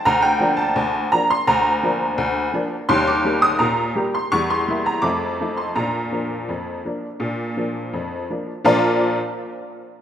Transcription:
X:1
M:2/4
L:1/16
Q:1/4=84
K:Bb
V:1 name="Honky-tonk piano"
b g2 a3 b c' | b6- b z | c' d'2 e' b3 c' | _d' c'2 b =d'3 c' |
b8- | b4 z4 | [B,,F,DFBd]2 z6 |]
V:2 name="Honky-tonk piano"
D,,2 [F,B,D]2 D,,2 [F,B,D]2 | D,,2 [F,B,D]2 D,,2 [F,B,D]2 | [E,,G,]2 [G,B,G]2 B,,2 [G,B,G]2 | [=E,,G,]2 [G,B,=E]2 [F,,A,]2 [F,A,_E]2 |
[B,,D]2 [F,B,D]2 F,,2 [F,B,D]2 | [B,,D]2 [F,B,D]2 F,,2 [F,B,D]2 | z8 |]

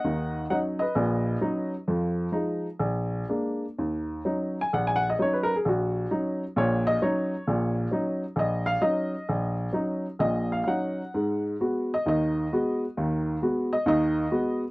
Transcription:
X:1
M:4/4
L:1/16
Q:"Swing" 1/4=131
K:Ebm
V:1 name="Upright piano"
[eg]4 [eg]2 [ce]8 z2 | z16 | z6 z a g a g e d c B A | G4 z4 d2 e2 d4- |
d2 z6 e2 f2 e4- | e2 z6 e2 f2 [fg]4- | [fg]2 z4 e2 e6 z2 | z6 e2 e6 z2 |]
V:2 name="Upright piano" clef=bass
[E,,E,]4 [G,DE]2 z2 [B,,,B,,]4 [G,DE]2 z2 | [F,,F,]4 [F,A,E]2 z2 B,,,4 [A,B,=D]2 z2 | E,,4 [G,DE]2 z2 B,,,4 [G,DE]2 z2 | B,,,4 [G,DE]2 z2 [B,,,B,,]4 [G,DE]2 z2 |
[B,,,B,,]4 [G,DE]2 z2 B,,,4 [G,DE]2 z2 | B,,,4 [G,DE]2 z2 [B,,,B,,]4 [G,DE]2 z2 | [A,,A,]4 [A,CG]2 z2 [E,,E,]4 [A,CG]2 z2 | [E,,E,]4 [A,CG]2 z2 [E,,E,]4 [A,CG]2 z2 |]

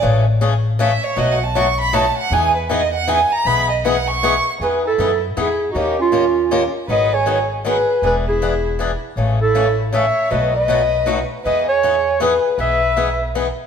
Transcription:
X:1
M:3/4
L:1/16
Q:"Swing" 1/4=158
K:E
V:1 name="Violin"
z8 e2 c2 | (3d2 f2 a2 c'2 b2 a2 f2 | g2 B2 d2 f2 g2 ^a2 | b2 d2 f2 c'4- c' z |
G2 E4 z2 E3- E/2 D/2 | D2 C8 z2 | B2 G4 z2 G4 | G2 E8 z2 |
z2 E4 z2 c4 | B2 B8 z2 | B2 G6 G4 | B8 z4 |]
V:2 name="Clarinet"
z12 | z12 | z12 | z12 |
B2 A4 z2 G3- G/2 F/2 | =G2 =F8 z2 | d2 c4 z2 B4 | B2 G8 z2 |
z2 A4 z2 e4 | d2 d8 z2 | d2 c6 B4 | e8 z4 |]
V:3 name="Steel-string acoustic guitar"
[C,E,A,CG]2 z2 [C,E,A,CG] z3 [C,E,A,CG] z3 | [B,,F,A,DF]2 z2 [B,,F,A,DF] z3 [B,,F,A,DF] z3 | [E,B,DG]2 z2 [E,B,DG] z3 [E,B,DG] z3 | [E,B,DG]2 z2 [E,B,DG] z3 [E,B,DG] z3 |
[E,B,DG]2 z2 [E,B,DG] z3 [E,B,DG] z3 | [D,^A,C=G^A]2 z2 [D,A,CGA] z3 [D,A,CGA] z3 | [D,F,B,DG]2 z2 [D,F,B,DG] z3 [D,F,B,DG] z3 | [E,B,=DG]2 z2 [E,B,DG] z3 [E,B,DG] z3 |
[C,E,A,CG]2 z2 [C,E,A,CG] z3 [C,E,A,CG] z3 | [B,,F,A,DF]2 z2 [B,,F,A,DF] z3 [B,,F,A,DF] z3 | [E,B,DG]2 z2 [E,B,DG] z3 [E,B,DG] z3 | [E,B,DG]2 z2 [E,B,DG] z3 [E,B,DG] z3 |]
V:4 name="Upright bass" clef=bass
A,,,12 | B,,,12 | E,,12 | B,,,12 |
E,,4 F,,4 E,,4 | D,,12 | G,,,12 | E,,,12 |
A,,,12 | B,,,12 | E,,12 | B,,,12 |]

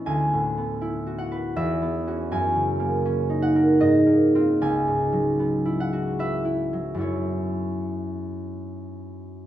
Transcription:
X:1
M:3/4
L:1/8
Q:1/4=77
K:F#m
V:1 name="Harp"
[eg]3 f e2 | g3 f ^d2 | g3 f e2 | c6 |]
V:2 name="Harp"
(3[D,,B,EB] A,, B, (3E F B (3E,, B, [CF] | (3F,, C, ^A, (3C ^D ^A (3G,, A, [^B,^E] | (3C,, G,, F, (3B, E F (3B E F, | [F,,F,B,E]6 |]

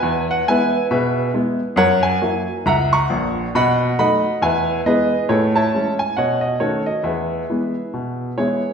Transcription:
X:1
M:4/4
L:1/8
Q:"Swing" 1/4=137
K:E
V:1 name="Grand piano"
[Beg] f [Beg]2 [GBe]2 z2 | [^Acf] g3 [ef^a] [fac']3 | [dfb]2 [dfb]2 [Beg]2 [GBd]2 | [GAc] [cea]2 g [cdf] d [FAc] d |
[GBe]6 [EGc]2 |]
V:2 name="Grand piano" clef=bass
E,,2 [G,B,E]2 B,,2 [G,B,E]2 | F,,2 [F,^A,E]2 C,,2 [^A,,,^A,,]2 | B,,2 [F,A,D]2 E,,2 [E,G,B,]2 | A,,2 [E,G,C]2 B,,2 [D,A,C]2 |
E,,2 [E,G,B,]2 B,,2 [E,G,B,]2 |]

